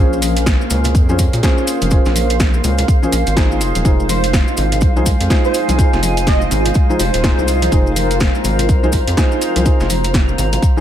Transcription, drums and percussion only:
0.13 maracas soft
0.22 open hi-hat loud
0.22 high bongo soft
0.22 high conga medium
0.22 maracas loud
0.37 closed hi-hat medium
0.37 maracas soft
0.46 kick loud
0.46 snare loud
0.46 closed hi-hat medium
0.46 maracas medium
0.61 maracas soft
0.70 open hi-hat loud
0.70 low conga medium
0.70 maracas loud
0.84 closed hi-hat medium
0.84 low conga medium
0.84 maracas soft
0.95 kick loud
0.95 closed hi-hat medium
0.95 maracas medium
1.09 high conga medium
1.09 maracas soft
1.19 kick medium
1.19 open hi-hat loud
1.19 maracas loud
1.33 closed hi-hat medium
1.33 high bongo soft
1.33 maracas soft
1.43 kick loud
1.43 snare loud
1.43 closed hi-hat medium
1.43 maracas medium
1.58 maracas soft
1.67 open hi-hat loud
1.67 maracas loud
1.82 closed hi-hat medium
1.82 high conga medium
1.82 maracas soft
1.91 kick loud
1.91 closed hi-hat medium
1.91 maracas medium
2.05 snare soft
2.05 maracas soft
2.15 open hi-hat loud
2.15 high conga medium
2.15 maracas loud
2.30 closed hi-hat medium
2.30 maracas soft
2.40 kick loud
2.40 snare loud
2.40 closed hi-hat soft
2.40 maracas medium
2.54 maracas soft
2.64 open hi-hat loud
2.64 low conga medium
2.64 maracas medium
2.78 closed hi-hat medium
2.78 low conga medium
2.78 maracas soft
2.88 kick loud
2.88 closed hi-hat medium
2.88 maracas medium
3.02 high conga medium
3.02 maracas soft
3.12 open hi-hat loud
3.12 high bongo soft
3.12 maracas loud
3.27 closed hi-hat medium
3.27 maracas soft
3.37 kick loud
3.37 snare loud
3.37 closed hi-hat soft
3.37 maracas medium
3.52 maracas soft
3.61 open hi-hat loud
3.61 maracas loud
3.75 closed hi-hat medium
3.75 high conga medium
3.75 maracas soft
3.85 kick loud
3.85 closed hi-hat soft
3.85 maracas medium
4.00 maracas soft
4.09 open hi-hat loud
4.09 high bongo soft
4.09 high conga medium
4.09 maracas medium
4.24 closed hi-hat medium
4.24 maracas soft
4.33 kick loud
4.33 snare loud
4.33 closed hi-hat medium
4.33 maracas medium
4.48 maracas soft
4.57 open hi-hat loud
4.57 low conga medium
4.57 maracas medium
4.72 closed hi-hat medium
4.72 low conga medium
4.72 maracas soft
4.81 kick loud
4.81 closed hi-hat medium
4.81 maracas soft
4.96 high conga medium
4.96 maracas soft
5.06 kick medium
5.06 open hi-hat loud
5.06 maracas loud
5.20 closed hi-hat medium
5.20 high bongo soft
5.20 maracas soft
5.30 kick loud
5.30 snare loud
5.30 closed hi-hat medium
5.30 maracas medium
5.45 maracas soft
5.54 open hi-hat loud
5.54 maracas medium
5.68 closed hi-hat medium
5.68 high conga medium
5.68 maracas soft
5.79 kick loud
5.79 closed hi-hat medium
5.79 maracas medium
5.93 snare soft
5.93 maracas soft
6.03 open hi-hat loud
6.03 high conga medium
6.03 maracas medium
6.17 closed hi-hat medium
6.17 maracas soft
6.27 kick loud
6.27 snare loud
6.27 closed hi-hat medium
6.27 maracas soft
6.41 maracas soft
6.51 open hi-hat medium
6.51 low conga medium
6.51 maracas medium
6.65 closed hi-hat medium
6.65 low conga medium
6.65 maracas soft
6.74 kick loud
6.74 closed hi-hat medium
6.74 maracas soft
6.89 high conga medium
6.89 maracas soft
7.00 open hi-hat loud
7.00 high bongo medium
7.00 maracas loud
7.14 closed hi-hat medium
7.14 maracas soft
7.24 kick loud
7.24 snare loud
7.24 closed hi-hat medium
7.24 maracas soft
7.39 maracas soft
7.48 open hi-hat medium
7.48 maracas medium
7.62 closed hi-hat medium
7.62 high conga medium
7.62 maracas soft
7.72 kick loud
7.72 closed hi-hat medium
7.72 maracas medium
7.87 maracas soft
7.96 open hi-hat loud
7.96 high bongo soft
7.96 high conga medium
7.96 maracas medium
8.11 closed hi-hat medium
8.11 maracas soft
8.20 kick loud
8.20 snare loud
8.20 closed hi-hat medium
8.20 maracas soft
8.35 maracas soft
8.44 open hi-hat medium
8.44 low conga medium
8.44 maracas medium
8.59 closed hi-hat medium
8.59 low conga medium
8.59 maracas soft
8.69 kick loud
8.69 closed hi-hat medium
8.69 maracas soft
8.83 high conga medium
8.83 maracas soft
8.92 kick medium
8.92 open hi-hat loud
8.92 maracas medium
9.07 closed hi-hat medium
9.07 high bongo soft
9.07 maracas soft
9.17 kick loud
9.17 snare loud
9.17 closed hi-hat medium
9.17 maracas soft
9.32 maracas soft
9.41 open hi-hat medium
9.41 maracas medium
9.56 closed hi-hat medium
9.56 high conga medium
9.56 maracas soft
9.66 kick loud
9.66 closed hi-hat medium
9.66 maracas medium
9.80 snare soft
9.80 maracas soft
9.89 open hi-hat loud
9.89 high bongo soft
9.89 high conga medium
9.89 maracas loud
10.04 closed hi-hat medium
10.04 maracas soft
10.14 kick loud
10.14 snare loud
10.14 closed hi-hat medium
10.14 maracas medium
10.28 maracas soft
10.38 open hi-hat medium
10.38 low conga medium
10.38 maracas medium
10.53 closed hi-hat medium
10.53 low conga medium
10.53 maracas soft
10.62 kick loud
10.62 closed hi-hat medium
10.62 maracas medium
10.76 high conga medium

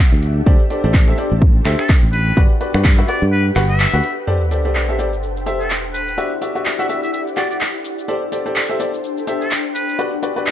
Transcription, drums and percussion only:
0.23 open hi-hat loud
0.46 kick loud
0.70 open hi-hat loud
0.94 kick loud
0.94 clap loud
1.18 open hi-hat medium
1.42 kick loud
1.65 finger snap medium
1.65 clap medium
1.65 open hi-hat loud
1.79 finger snap medium
1.89 kick loud
1.89 clap loud
2.13 open hi-hat medium
2.37 kick loud
2.61 open hi-hat loud
2.74 finger snap medium
2.85 kick loud
2.85 clap loud
3.08 open hi-hat loud
3.56 finger snap medium
3.56 clap medium
3.56 open hi-hat loud
3.80 clap loud
4.04 open hi-hat loud
4.28 shaker soft
4.51 open hi-hat loud
4.51 shaker medium
4.65 shaker soft
4.75 clap loud
4.75 shaker soft
4.99 open hi-hat medium
4.99 shaker medium
5.13 shaker soft
5.23 shaker soft
5.37 shaker soft
5.46 open hi-hat medium
5.46 shaker medium
5.61 shaker soft
5.70 clap loud
5.70 shaker soft
5.94 open hi-hat medium
5.94 shaker medium
6.08 shaker soft
6.18 shaker soft
6.42 open hi-hat loud
6.42 shaker medium
6.56 shaker soft
6.65 clap loud
6.65 shaker soft
6.80 shaker soft
6.89 open hi-hat medium
6.89 shaker medium
7.03 shaker soft
7.13 shaker soft
7.27 shaker soft
7.37 clap medium
7.37 open hi-hat loud
7.37 shaker medium
7.51 shaker soft
7.61 clap loud
7.61 shaker soft
7.84 open hi-hat medium
7.84 shaker medium
7.99 shaker soft
8.09 shaker soft
8.32 open hi-hat loud
8.32 shaker medium
8.46 shaker soft
8.56 clap loud
8.56 shaker soft
8.80 open hi-hat medium
8.80 shaker medium
8.94 shaker soft
9.04 shaker soft
9.18 shaker soft
9.27 open hi-hat loud
9.27 shaker medium
9.41 shaker soft
9.51 clap loud
9.51 shaker soft
9.75 open hi-hat medium
9.75 shaker medium
9.89 shaker soft
9.99 shaker soft
10.23 open hi-hat loud
10.23 shaker medium
10.37 shaker soft
10.46 clap loud
10.46 shaker soft

